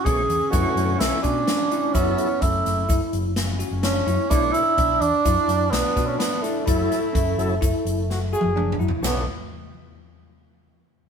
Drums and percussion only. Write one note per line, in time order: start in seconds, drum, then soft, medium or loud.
0.06 kick loud
0.06 closed hi-hat medium
0.30 closed hi-hat medium
0.53 kick loud
0.53 closed hi-hat medium
0.53 shaker medium
0.77 closed hi-hat medium
1.00 snare loud
1.00 closed hi-hat medium
1.24 kick medium
1.24 closed hi-hat medium
1.24 shaker soft
1.48 snare loud
1.48 closed hi-hat medium
1.72 closed hi-hat medium
1.95 kick medium
1.95 closed hi-hat medium
1.95 shaker medium
2.18 closed hi-hat medium
2.18 shaker soft
2.42 kick loud
2.42 closed hi-hat medium
2.66 snare soft
2.66 closed hi-hat medium
2.89 kick loud
2.89 closed hi-hat medium
2.89 shaker medium
3.13 closed hi-hat medium
3.36 snare loud
3.36 closed hi-hat medium
3.60 closed hi-hat medium
3.60 shaker soft
3.83 snare loud
3.83 closed hi-hat medium
4.08 closed hi-hat medium
4.31 kick loud
4.31 closed hi-hat medium
4.31 shaker medium
4.54 closed hi-hat medium
4.54 shaker soft
4.78 kick loud
4.78 closed hi-hat medium
5.02 closed hi-hat medium
5.26 kick loud
5.26 closed hi-hat medium
5.26 shaker medium
5.49 snare soft
5.49 closed hi-hat medium
5.73 snare loud
5.73 closed hi-hat medium
5.97 kick medium
5.97 snare soft
5.97 closed hi-hat medium
5.97 shaker soft
6.20 snare loud
6.20 closed hi-hat medium
6.44 snare soft
6.44 closed hi-hat medium
6.67 kick loud
6.67 closed hi-hat medium
6.67 shaker medium
6.92 snare soft
6.92 closed hi-hat medium
6.92 shaker soft
7.15 kick loud
7.15 closed hi-hat medium
7.15 shaker soft
7.39 closed hi-hat medium
7.62 kick loud
7.62 closed hi-hat medium
7.62 shaker medium
7.87 closed hi-hat medium
8.10 snare medium
8.34 shaker soft
8.41 high tom medium
8.57 mid tom medium
8.72 mid tom medium
8.81 shaker soft
8.88 floor tom medium
9.04 snare medium
9.04 ride bell medium
9.04 shaker medium